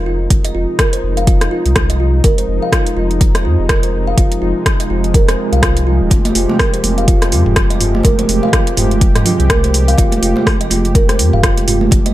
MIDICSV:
0, 0, Header, 1, 5, 480
1, 0, Start_track
1, 0, Key_signature, -4, "minor"
1, 0, Tempo, 483871
1, 304, Time_signature, 4, 2, 24, 8
1, 12041, End_track
2, 0, Start_track
2, 0, Title_t, "Kalimba"
2, 0, Program_c, 0, 108
2, 63, Note_on_c, 0, 65, 72
2, 138, Note_off_c, 0, 65, 0
2, 444, Note_on_c, 0, 75, 81
2, 534, Note_off_c, 0, 75, 0
2, 542, Note_on_c, 0, 65, 78
2, 618, Note_off_c, 0, 65, 0
2, 782, Note_on_c, 0, 70, 95
2, 908, Note_off_c, 0, 70, 0
2, 923, Note_on_c, 0, 72, 78
2, 1014, Note_off_c, 0, 72, 0
2, 1162, Note_on_c, 0, 77, 76
2, 1253, Note_off_c, 0, 77, 0
2, 1263, Note_on_c, 0, 65, 81
2, 1395, Note_off_c, 0, 65, 0
2, 1500, Note_on_c, 0, 65, 79
2, 1577, Note_off_c, 0, 65, 0
2, 1881, Note_on_c, 0, 75, 78
2, 1973, Note_off_c, 0, 75, 0
2, 1984, Note_on_c, 0, 65, 72
2, 2059, Note_off_c, 0, 65, 0
2, 2225, Note_on_c, 0, 70, 100
2, 2349, Note_off_c, 0, 70, 0
2, 2362, Note_on_c, 0, 72, 76
2, 2453, Note_off_c, 0, 72, 0
2, 2604, Note_on_c, 0, 77, 75
2, 2694, Note_off_c, 0, 77, 0
2, 2705, Note_on_c, 0, 65, 80
2, 2836, Note_off_c, 0, 65, 0
2, 2942, Note_on_c, 0, 65, 73
2, 3018, Note_off_c, 0, 65, 0
2, 3323, Note_on_c, 0, 75, 71
2, 3413, Note_off_c, 0, 75, 0
2, 3423, Note_on_c, 0, 65, 74
2, 3498, Note_off_c, 0, 65, 0
2, 3663, Note_on_c, 0, 70, 98
2, 3788, Note_off_c, 0, 70, 0
2, 3801, Note_on_c, 0, 72, 73
2, 3893, Note_off_c, 0, 72, 0
2, 4042, Note_on_c, 0, 77, 78
2, 4133, Note_off_c, 0, 77, 0
2, 4143, Note_on_c, 0, 65, 83
2, 4276, Note_off_c, 0, 65, 0
2, 4382, Note_on_c, 0, 65, 79
2, 4458, Note_off_c, 0, 65, 0
2, 4761, Note_on_c, 0, 75, 72
2, 4853, Note_off_c, 0, 75, 0
2, 4863, Note_on_c, 0, 65, 73
2, 4938, Note_off_c, 0, 65, 0
2, 5102, Note_on_c, 0, 70, 103
2, 5228, Note_off_c, 0, 70, 0
2, 5242, Note_on_c, 0, 72, 73
2, 5333, Note_off_c, 0, 72, 0
2, 5482, Note_on_c, 0, 77, 71
2, 5573, Note_off_c, 0, 77, 0
2, 5582, Note_on_c, 0, 65, 77
2, 5715, Note_off_c, 0, 65, 0
2, 5821, Note_on_c, 0, 65, 77
2, 5897, Note_off_c, 0, 65, 0
2, 6202, Note_on_c, 0, 75, 77
2, 6293, Note_off_c, 0, 75, 0
2, 6302, Note_on_c, 0, 65, 77
2, 6378, Note_off_c, 0, 65, 0
2, 6542, Note_on_c, 0, 70, 93
2, 6668, Note_off_c, 0, 70, 0
2, 6680, Note_on_c, 0, 72, 78
2, 6772, Note_off_c, 0, 72, 0
2, 6921, Note_on_c, 0, 77, 76
2, 7013, Note_off_c, 0, 77, 0
2, 7023, Note_on_c, 0, 65, 80
2, 7156, Note_off_c, 0, 65, 0
2, 7263, Note_on_c, 0, 65, 75
2, 7339, Note_off_c, 0, 65, 0
2, 7642, Note_on_c, 0, 75, 76
2, 7733, Note_off_c, 0, 75, 0
2, 7743, Note_on_c, 0, 65, 73
2, 7819, Note_off_c, 0, 65, 0
2, 7983, Note_on_c, 0, 70, 98
2, 8108, Note_off_c, 0, 70, 0
2, 8123, Note_on_c, 0, 72, 79
2, 8213, Note_off_c, 0, 72, 0
2, 8363, Note_on_c, 0, 77, 79
2, 8454, Note_off_c, 0, 77, 0
2, 8462, Note_on_c, 0, 65, 80
2, 8595, Note_off_c, 0, 65, 0
2, 8703, Note_on_c, 0, 65, 75
2, 8778, Note_off_c, 0, 65, 0
2, 9082, Note_on_c, 0, 75, 75
2, 9173, Note_off_c, 0, 75, 0
2, 9183, Note_on_c, 0, 65, 75
2, 9259, Note_off_c, 0, 65, 0
2, 9423, Note_on_c, 0, 70, 101
2, 9549, Note_off_c, 0, 70, 0
2, 9564, Note_on_c, 0, 72, 76
2, 9654, Note_off_c, 0, 72, 0
2, 9802, Note_on_c, 0, 77, 82
2, 9893, Note_off_c, 0, 77, 0
2, 9903, Note_on_c, 0, 65, 84
2, 10035, Note_off_c, 0, 65, 0
2, 10142, Note_on_c, 0, 65, 77
2, 10218, Note_off_c, 0, 65, 0
2, 10523, Note_on_c, 0, 75, 82
2, 10614, Note_off_c, 0, 75, 0
2, 10623, Note_on_c, 0, 65, 75
2, 10698, Note_off_c, 0, 65, 0
2, 10865, Note_on_c, 0, 70, 107
2, 10990, Note_off_c, 0, 70, 0
2, 11003, Note_on_c, 0, 72, 77
2, 11094, Note_off_c, 0, 72, 0
2, 11244, Note_on_c, 0, 77, 74
2, 11334, Note_off_c, 0, 77, 0
2, 11344, Note_on_c, 0, 65, 81
2, 11476, Note_off_c, 0, 65, 0
2, 11584, Note_on_c, 0, 65, 79
2, 11659, Note_off_c, 0, 65, 0
2, 11964, Note_on_c, 0, 75, 75
2, 12041, Note_off_c, 0, 75, 0
2, 12041, End_track
3, 0, Start_track
3, 0, Title_t, "Analog synth pad"
3, 0, Program_c, 1, 89
3, 0, Note_on_c, 1, 48, 85
3, 0, Note_on_c, 1, 53, 74
3, 0, Note_on_c, 1, 56, 74
3, 0, Note_on_c, 1, 63, 89
3, 6053, Note_off_c, 1, 63, 0
3, 6061, Note_on_c, 1, 67, 85
3, 12041, Note_off_c, 1, 48, 0
3, 12041, Note_off_c, 1, 53, 0
3, 12041, Note_off_c, 1, 56, 0
3, 12041, Note_off_c, 1, 67, 0
3, 12041, End_track
4, 0, Start_track
4, 0, Title_t, "Sub bass"
4, 0, Program_c, 2, 38
4, 0, Note_on_c, 2, 29, 79
4, 276, Note_off_c, 2, 29, 0
4, 302, Note_on_c, 2, 29, 95
4, 508, Note_off_c, 2, 29, 0
4, 544, Note_on_c, 2, 29, 100
4, 659, Note_off_c, 2, 29, 0
4, 1023, Note_on_c, 2, 29, 100
4, 1476, Note_off_c, 2, 29, 0
4, 1642, Note_on_c, 2, 36, 93
4, 2196, Note_off_c, 2, 36, 0
4, 2223, Note_on_c, 2, 29, 95
4, 2429, Note_off_c, 2, 29, 0
4, 2461, Note_on_c, 2, 29, 99
4, 2578, Note_off_c, 2, 29, 0
4, 2941, Note_on_c, 2, 29, 102
4, 3423, Note_on_c, 2, 41, 77
4, 3438, Note_off_c, 2, 29, 0
4, 3539, Note_off_c, 2, 41, 0
4, 3560, Note_on_c, 2, 29, 81
4, 4115, Note_off_c, 2, 29, 0
4, 4141, Note_on_c, 2, 29, 92
4, 4348, Note_off_c, 2, 29, 0
4, 4382, Note_on_c, 2, 29, 97
4, 4498, Note_off_c, 2, 29, 0
4, 4861, Note_on_c, 2, 29, 102
4, 5315, Note_off_c, 2, 29, 0
4, 5479, Note_on_c, 2, 36, 96
4, 5954, Note_off_c, 2, 36, 0
4, 5960, Note_on_c, 2, 27, 92
4, 6045, Note_off_c, 2, 27, 0
4, 6062, Note_on_c, 2, 29, 96
4, 6269, Note_off_c, 2, 29, 0
4, 6301, Note_on_c, 2, 29, 108
4, 6418, Note_off_c, 2, 29, 0
4, 6781, Note_on_c, 2, 29, 101
4, 7262, Note_on_c, 2, 41, 79
4, 7277, Note_off_c, 2, 29, 0
4, 7378, Note_off_c, 2, 41, 0
4, 7399, Note_on_c, 2, 29, 86
4, 7954, Note_off_c, 2, 29, 0
4, 7980, Note_on_c, 2, 29, 100
4, 8188, Note_off_c, 2, 29, 0
4, 8221, Note_on_c, 2, 29, 100
4, 8338, Note_off_c, 2, 29, 0
4, 8701, Note_on_c, 2, 29, 104
4, 9155, Note_off_c, 2, 29, 0
4, 9320, Note_on_c, 2, 36, 99
4, 9875, Note_off_c, 2, 36, 0
4, 9903, Note_on_c, 2, 29, 97
4, 10109, Note_off_c, 2, 29, 0
4, 10141, Note_on_c, 2, 29, 105
4, 10258, Note_off_c, 2, 29, 0
4, 10620, Note_on_c, 2, 29, 97
4, 11101, Note_on_c, 2, 41, 76
4, 11116, Note_off_c, 2, 29, 0
4, 11218, Note_off_c, 2, 41, 0
4, 11240, Note_on_c, 2, 29, 82
4, 11795, Note_off_c, 2, 29, 0
4, 11822, Note_on_c, 2, 29, 98
4, 12029, Note_off_c, 2, 29, 0
4, 12041, End_track
5, 0, Start_track
5, 0, Title_t, "Drums"
5, 302, Note_on_c, 9, 36, 115
5, 302, Note_on_c, 9, 42, 70
5, 401, Note_off_c, 9, 42, 0
5, 402, Note_off_c, 9, 36, 0
5, 442, Note_on_c, 9, 42, 45
5, 541, Note_off_c, 9, 42, 0
5, 782, Note_on_c, 9, 36, 114
5, 782, Note_on_c, 9, 37, 111
5, 782, Note_on_c, 9, 42, 67
5, 882, Note_off_c, 9, 36, 0
5, 882, Note_off_c, 9, 37, 0
5, 882, Note_off_c, 9, 42, 0
5, 922, Note_on_c, 9, 42, 47
5, 1022, Note_off_c, 9, 42, 0
5, 1162, Note_on_c, 9, 42, 29
5, 1261, Note_off_c, 9, 42, 0
5, 1263, Note_on_c, 9, 36, 123
5, 1263, Note_on_c, 9, 42, 68
5, 1362, Note_off_c, 9, 36, 0
5, 1362, Note_off_c, 9, 42, 0
5, 1402, Note_on_c, 9, 37, 64
5, 1402, Note_on_c, 9, 42, 46
5, 1501, Note_off_c, 9, 37, 0
5, 1501, Note_off_c, 9, 42, 0
5, 1642, Note_on_c, 9, 42, 31
5, 1742, Note_off_c, 9, 42, 0
5, 1743, Note_on_c, 9, 36, 112
5, 1743, Note_on_c, 9, 37, 110
5, 1743, Note_on_c, 9, 42, 63
5, 1842, Note_off_c, 9, 37, 0
5, 1842, Note_off_c, 9, 42, 0
5, 1843, Note_off_c, 9, 36, 0
5, 1882, Note_on_c, 9, 42, 45
5, 1982, Note_off_c, 9, 42, 0
5, 2222, Note_on_c, 9, 42, 67
5, 2223, Note_on_c, 9, 36, 119
5, 2321, Note_off_c, 9, 42, 0
5, 2322, Note_off_c, 9, 36, 0
5, 2363, Note_on_c, 9, 42, 42
5, 2462, Note_off_c, 9, 42, 0
5, 2703, Note_on_c, 9, 36, 114
5, 2704, Note_on_c, 9, 37, 115
5, 2704, Note_on_c, 9, 42, 65
5, 2802, Note_off_c, 9, 36, 0
5, 2803, Note_off_c, 9, 37, 0
5, 2803, Note_off_c, 9, 42, 0
5, 2842, Note_on_c, 9, 42, 42
5, 2941, Note_off_c, 9, 42, 0
5, 3082, Note_on_c, 9, 42, 27
5, 3182, Note_off_c, 9, 42, 0
5, 3183, Note_on_c, 9, 36, 119
5, 3183, Note_on_c, 9, 42, 62
5, 3282, Note_off_c, 9, 36, 0
5, 3282, Note_off_c, 9, 42, 0
5, 3323, Note_on_c, 9, 37, 67
5, 3323, Note_on_c, 9, 42, 46
5, 3422, Note_off_c, 9, 37, 0
5, 3422, Note_off_c, 9, 42, 0
5, 3663, Note_on_c, 9, 36, 113
5, 3663, Note_on_c, 9, 37, 111
5, 3663, Note_on_c, 9, 42, 61
5, 3762, Note_off_c, 9, 36, 0
5, 3762, Note_off_c, 9, 37, 0
5, 3762, Note_off_c, 9, 42, 0
5, 3801, Note_on_c, 9, 42, 41
5, 3900, Note_off_c, 9, 42, 0
5, 4142, Note_on_c, 9, 36, 124
5, 4143, Note_on_c, 9, 42, 67
5, 4241, Note_off_c, 9, 36, 0
5, 4242, Note_off_c, 9, 42, 0
5, 4282, Note_on_c, 9, 42, 41
5, 4381, Note_off_c, 9, 42, 0
5, 4622, Note_on_c, 9, 36, 119
5, 4623, Note_on_c, 9, 37, 107
5, 4623, Note_on_c, 9, 42, 64
5, 4721, Note_off_c, 9, 36, 0
5, 4722, Note_off_c, 9, 37, 0
5, 4722, Note_off_c, 9, 42, 0
5, 4761, Note_on_c, 9, 42, 43
5, 4861, Note_off_c, 9, 42, 0
5, 5001, Note_on_c, 9, 42, 27
5, 5101, Note_off_c, 9, 42, 0
5, 5102, Note_on_c, 9, 36, 124
5, 5103, Note_on_c, 9, 42, 61
5, 5201, Note_off_c, 9, 36, 0
5, 5202, Note_off_c, 9, 42, 0
5, 5243, Note_on_c, 9, 37, 68
5, 5243, Note_on_c, 9, 42, 45
5, 5342, Note_off_c, 9, 37, 0
5, 5342, Note_off_c, 9, 42, 0
5, 5482, Note_on_c, 9, 42, 30
5, 5581, Note_off_c, 9, 42, 0
5, 5582, Note_on_c, 9, 36, 110
5, 5582, Note_on_c, 9, 37, 109
5, 5582, Note_on_c, 9, 42, 63
5, 5681, Note_off_c, 9, 36, 0
5, 5681, Note_off_c, 9, 37, 0
5, 5681, Note_off_c, 9, 42, 0
5, 5720, Note_on_c, 9, 42, 42
5, 5820, Note_off_c, 9, 42, 0
5, 6055, Note_on_c, 9, 62, 52
5, 6062, Note_on_c, 9, 36, 116
5, 6062, Note_on_c, 9, 42, 67
5, 6155, Note_off_c, 9, 62, 0
5, 6161, Note_off_c, 9, 36, 0
5, 6161, Note_off_c, 9, 42, 0
5, 6200, Note_on_c, 9, 63, 104
5, 6201, Note_on_c, 9, 42, 42
5, 6299, Note_off_c, 9, 63, 0
5, 6300, Note_off_c, 9, 42, 0
5, 6301, Note_on_c, 9, 46, 81
5, 6400, Note_off_c, 9, 46, 0
5, 6442, Note_on_c, 9, 63, 101
5, 6447, Note_on_c, 9, 62, 38
5, 6541, Note_off_c, 9, 63, 0
5, 6542, Note_on_c, 9, 36, 112
5, 6542, Note_on_c, 9, 37, 103
5, 6542, Note_on_c, 9, 46, 49
5, 6546, Note_off_c, 9, 62, 0
5, 6641, Note_off_c, 9, 36, 0
5, 6641, Note_off_c, 9, 37, 0
5, 6641, Note_off_c, 9, 46, 0
5, 6682, Note_on_c, 9, 42, 45
5, 6782, Note_off_c, 9, 42, 0
5, 6782, Note_on_c, 9, 62, 44
5, 6782, Note_on_c, 9, 63, 60
5, 6783, Note_on_c, 9, 46, 88
5, 6881, Note_off_c, 9, 63, 0
5, 6882, Note_off_c, 9, 46, 0
5, 6882, Note_off_c, 9, 62, 0
5, 6922, Note_on_c, 9, 42, 28
5, 7021, Note_off_c, 9, 42, 0
5, 7022, Note_on_c, 9, 36, 116
5, 7022, Note_on_c, 9, 42, 64
5, 7121, Note_off_c, 9, 36, 0
5, 7121, Note_off_c, 9, 42, 0
5, 7159, Note_on_c, 9, 62, 38
5, 7162, Note_on_c, 9, 37, 64
5, 7162, Note_on_c, 9, 42, 45
5, 7258, Note_off_c, 9, 62, 0
5, 7262, Note_off_c, 9, 37, 0
5, 7262, Note_off_c, 9, 42, 0
5, 7262, Note_on_c, 9, 46, 79
5, 7362, Note_off_c, 9, 46, 0
5, 7402, Note_on_c, 9, 45, 92
5, 7501, Note_off_c, 9, 45, 0
5, 7501, Note_on_c, 9, 37, 109
5, 7501, Note_on_c, 9, 42, 65
5, 7502, Note_on_c, 9, 36, 110
5, 7601, Note_off_c, 9, 36, 0
5, 7601, Note_off_c, 9, 37, 0
5, 7601, Note_off_c, 9, 42, 0
5, 7641, Note_on_c, 9, 62, 52
5, 7643, Note_on_c, 9, 42, 41
5, 7740, Note_off_c, 9, 62, 0
5, 7742, Note_off_c, 9, 42, 0
5, 7743, Note_on_c, 9, 45, 84
5, 7743, Note_on_c, 9, 46, 88
5, 7842, Note_off_c, 9, 45, 0
5, 7842, Note_off_c, 9, 46, 0
5, 7883, Note_on_c, 9, 63, 90
5, 7970, Note_on_c, 9, 62, 51
5, 7982, Note_off_c, 9, 63, 0
5, 7982, Note_on_c, 9, 36, 108
5, 7982, Note_on_c, 9, 42, 70
5, 8070, Note_off_c, 9, 62, 0
5, 8081, Note_off_c, 9, 36, 0
5, 8082, Note_off_c, 9, 42, 0
5, 8122, Note_on_c, 9, 42, 46
5, 8122, Note_on_c, 9, 63, 98
5, 8221, Note_off_c, 9, 42, 0
5, 8221, Note_off_c, 9, 63, 0
5, 8223, Note_on_c, 9, 46, 77
5, 8322, Note_off_c, 9, 46, 0
5, 8362, Note_on_c, 9, 63, 100
5, 8365, Note_on_c, 9, 62, 43
5, 8461, Note_off_c, 9, 63, 0
5, 8462, Note_on_c, 9, 36, 113
5, 8463, Note_on_c, 9, 37, 101
5, 8463, Note_on_c, 9, 42, 64
5, 8463, Note_on_c, 9, 64, 76
5, 8464, Note_off_c, 9, 62, 0
5, 8562, Note_off_c, 9, 36, 0
5, 8562, Note_off_c, 9, 37, 0
5, 8562, Note_off_c, 9, 42, 0
5, 8562, Note_off_c, 9, 64, 0
5, 8602, Note_on_c, 9, 42, 45
5, 8698, Note_on_c, 9, 62, 47
5, 8701, Note_off_c, 9, 42, 0
5, 8703, Note_on_c, 9, 45, 85
5, 8703, Note_on_c, 9, 46, 89
5, 8704, Note_on_c, 9, 63, 57
5, 8797, Note_off_c, 9, 62, 0
5, 8802, Note_off_c, 9, 45, 0
5, 8802, Note_off_c, 9, 46, 0
5, 8803, Note_off_c, 9, 63, 0
5, 8842, Note_on_c, 9, 42, 29
5, 8941, Note_off_c, 9, 42, 0
5, 8941, Note_on_c, 9, 42, 64
5, 8942, Note_on_c, 9, 36, 118
5, 9040, Note_off_c, 9, 42, 0
5, 9041, Note_off_c, 9, 36, 0
5, 9082, Note_on_c, 9, 37, 61
5, 9082, Note_on_c, 9, 42, 45
5, 9082, Note_on_c, 9, 45, 102
5, 9085, Note_on_c, 9, 62, 36
5, 9180, Note_on_c, 9, 64, 98
5, 9181, Note_off_c, 9, 37, 0
5, 9181, Note_off_c, 9, 42, 0
5, 9181, Note_off_c, 9, 45, 0
5, 9183, Note_on_c, 9, 46, 84
5, 9184, Note_off_c, 9, 62, 0
5, 9279, Note_off_c, 9, 64, 0
5, 9282, Note_off_c, 9, 46, 0
5, 9323, Note_on_c, 9, 42, 32
5, 9421, Note_on_c, 9, 63, 62
5, 9422, Note_off_c, 9, 42, 0
5, 9422, Note_on_c, 9, 36, 107
5, 9423, Note_on_c, 9, 37, 97
5, 9423, Note_on_c, 9, 42, 65
5, 9520, Note_off_c, 9, 63, 0
5, 9522, Note_off_c, 9, 36, 0
5, 9522, Note_off_c, 9, 37, 0
5, 9522, Note_off_c, 9, 42, 0
5, 9563, Note_on_c, 9, 42, 42
5, 9565, Note_on_c, 9, 62, 47
5, 9662, Note_off_c, 9, 42, 0
5, 9664, Note_off_c, 9, 62, 0
5, 9664, Note_on_c, 9, 46, 89
5, 9763, Note_off_c, 9, 46, 0
5, 9803, Note_on_c, 9, 46, 52
5, 9896, Note_on_c, 9, 62, 54
5, 9902, Note_on_c, 9, 36, 112
5, 9903, Note_off_c, 9, 46, 0
5, 9904, Note_on_c, 9, 42, 73
5, 9995, Note_off_c, 9, 62, 0
5, 10002, Note_off_c, 9, 36, 0
5, 10003, Note_off_c, 9, 42, 0
5, 10038, Note_on_c, 9, 63, 91
5, 10043, Note_on_c, 9, 42, 46
5, 10137, Note_off_c, 9, 63, 0
5, 10142, Note_off_c, 9, 42, 0
5, 10144, Note_on_c, 9, 46, 81
5, 10244, Note_off_c, 9, 46, 0
5, 10275, Note_on_c, 9, 62, 45
5, 10283, Note_on_c, 9, 63, 105
5, 10374, Note_off_c, 9, 62, 0
5, 10382, Note_off_c, 9, 63, 0
5, 10383, Note_on_c, 9, 36, 103
5, 10384, Note_on_c, 9, 37, 102
5, 10384, Note_on_c, 9, 46, 51
5, 10482, Note_off_c, 9, 36, 0
5, 10484, Note_off_c, 9, 37, 0
5, 10484, Note_off_c, 9, 46, 0
5, 10523, Note_on_c, 9, 42, 48
5, 10619, Note_on_c, 9, 62, 48
5, 10622, Note_off_c, 9, 42, 0
5, 10624, Note_on_c, 9, 46, 87
5, 10624, Note_on_c, 9, 63, 58
5, 10718, Note_off_c, 9, 62, 0
5, 10723, Note_off_c, 9, 46, 0
5, 10723, Note_off_c, 9, 63, 0
5, 10763, Note_on_c, 9, 42, 32
5, 10862, Note_off_c, 9, 42, 0
5, 10862, Note_on_c, 9, 36, 112
5, 10863, Note_on_c, 9, 42, 65
5, 10962, Note_off_c, 9, 36, 0
5, 10962, Note_off_c, 9, 42, 0
5, 11001, Note_on_c, 9, 62, 39
5, 11003, Note_on_c, 9, 37, 59
5, 11003, Note_on_c, 9, 42, 49
5, 11100, Note_off_c, 9, 62, 0
5, 11102, Note_off_c, 9, 37, 0
5, 11102, Note_off_c, 9, 42, 0
5, 11102, Note_on_c, 9, 46, 89
5, 11202, Note_off_c, 9, 46, 0
5, 11242, Note_on_c, 9, 45, 89
5, 11341, Note_off_c, 9, 45, 0
5, 11342, Note_on_c, 9, 36, 101
5, 11343, Note_on_c, 9, 37, 96
5, 11343, Note_on_c, 9, 42, 69
5, 11442, Note_off_c, 9, 36, 0
5, 11443, Note_off_c, 9, 37, 0
5, 11443, Note_off_c, 9, 42, 0
5, 11482, Note_on_c, 9, 62, 55
5, 11483, Note_on_c, 9, 42, 44
5, 11581, Note_off_c, 9, 62, 0
5, 11582, Note_off_c, 9, 42, 0
5, 11584, Note_on_c, 9, 45, 77
5, 11584, Note_on_c, 9, 46, 90
5, 11683, Note_off_c, 9, 45, 0
5, 11683, Note_off_c, 9, 46, 0
5, 11717, Note_on_c, 9, 63, 91
5, 11816, Note_off_c, 9, 63, 0
5, 11816, Note_on_c, 9, 62, 56
5, 11822, Note_on_c, 9, 36, 117
5, 11824, Note_on_c, 9, 42, 73
5, 11915, Note_off_c, 9, 62, 0
5, 11922, Note_off_c, 9, 36, 0
5, 11923, Note_off_c, 9, 42, 0
5, 11961, Note_on_c, 9, 63, 94
5, 11962, Note_on_c, 9, 42, 49
5, 12041, Note_off_c, 9, 42, 0
5, 12041, Note_off_c, 9, 63, 0
5, 12041, End_track
0, 0, End_of_file